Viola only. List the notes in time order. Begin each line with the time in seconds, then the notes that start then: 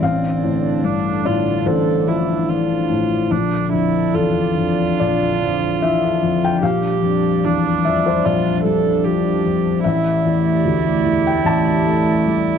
0.01 C4
0.85 D4
1.26 F4
1.67 A4
2.08 E4
2.49 F4
3.31 D4
3.73 E4
4.14 F4
6.63 G4
7.44 D4
8.25 F4
8.64 A4
9.04 G4
9.85 E4